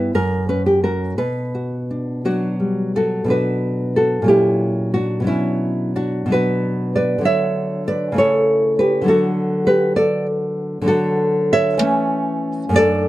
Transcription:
Already playing: G2 B3 E4 B4
0.15 F#2 A#4
0.49 C#4 B4
0.66 G4
0.84 C#4 F#4 A#4
1.18 B2 B4
1.55 F#4
1.91 D4
2.25 F#3 D4 F#4
2.60 G3
2.96 F#3 F#4 A4
3.24 B2 F#3 D4
3.30 F#4 B4
3.96 F#4 A4
4.22 A#2 F#3 C#4
4.28 E4 G4
4.94 D4 F#4
5.20 B2 F#3 D4
5.27 C#4 E4
5.96 D4 F#4
6.26 B2 F#3
6.30 D4 F#4 B4
6.96 B4 D5
7.18 D3 F#3
7.23 D4 C#5 E5
7.88 B4 D5
8.12 C#3 A3 E4
8.18 A4 C#5
8.79 G4 B4
9.02 D3 F#3
9.06 D4 F#4 A4
9.67 G4 B4
9.96 A4 D5
10.82 D3 F#3
10.86 D4 F#4 A4
11.53 C#5 E5
11.77 E3 A3
11.82 C#4
12.69 F#2 A3
12.74 D4 A4 D5

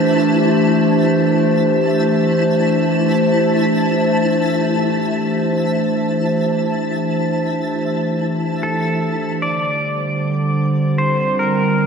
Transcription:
Already playing: E3 A3 D4 E4 G4 C5 A5
8.63 A4
9.40 D3 G4 D5 A5
9.63 G3
10.72 F4
10.80 C4
10.98 C5
11.39 A#4

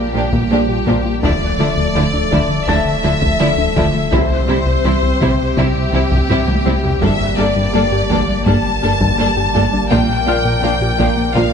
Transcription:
Already playing: A#1 G3 A#3 F4 G4 D5 A#5 A#6
0.14 A#2 F3 A#3 D4 G4
0.33 A#2 A#3, taiko
0.50 A#2 F3 A#3 D4 G4
0.68 A#2 G4
0.86 A#2 F3 A#3 D4 G4, taiko
1.05 A#3 F4
1.23 D1 D2 D3 F3 A3 D4 E4 A4 D5 E5, taiko
1.41 D2
1.59 D3 F3 A3 D4 E4
1.77 D2 D3
1.95 D2 D3 F3 A3 D4 E4
2.13 D2 D4
2.31 D2 D3 F3 A3 D4 E4, taiko
2.49 D3
2.67 D2 D3 F3 A3 D4 E4 E5 A5 A6, taiko
2.85 D3
3.03 D2 D3 F3 A3 D4 E4
3.22 D2 D3, taiko
3.39 D3 F3 A3 D4 E4
3.57 D2 D4
3.76 D2 D3 F3 A3 D4 E4, taiko
3.95 D3 A3
4.12 C2 C3 G3 C4 E4 G4 C5, taiko
4.30 C2
4.48 C3 G3 C4 E4
4.66 C2 C3
4.84 C2 C3 E3 G3 C4 E4
5.03 C2 C4
5.20 C2 C3 G3 C4 E4, taiko
5.39 C3
5.57 C2 C3 G3 C4 E4 G4, taiko
5.76 C3
5.93 C2 C3 E3 G3 C4 E4
6.11 C2 C3, taiko
6.29 C3 G3 C4 E4, taiko low-mid
6.47 C2 C4, taiko high
6.65 C2 C3 G3 C4 E4, taiko high
6.84 C3 G3, taiko low
7.01 G1 G2 G3 A#3 D4 A4 D5 E5, taiko
7.20 G2
7.37 G2 G3 A#3 D4 A4 D5
7.56 G2 G3
7.74 G2 G3 A#3 D4 A4
7.92 G2 G4
8.10 G2 G3 A#3 D4 A4, taiko
8.28 G3
8.46 G2 G3 A#3 D4 A4 A5, taiko
8.65 G3
8.82 G2 G3 A#3 D4 A4
9.01 G2 G3, taiko
9.18 G2 G3 A#3 D4 A4
9.37 G2 G4
9.54 G2 G3 A#3 D4 A4, taiko
9.72 G3 D4
9.90 A#1 A#2 F3 A#3 D4 F4 A#4 G5, taiko
10.08 A#2
10.26 A#2 F3 A#3 D4 F4 F6
10.45 A#2 A#3
10.63 A#2 F3 A#3 D4 F4
10.81 A#2 G4
10.98 A#2 F3 A#3 D4 F4, taiko
11.17 A#3
11.34 A#2 F3 A#3 D4 F4 F5, taiko

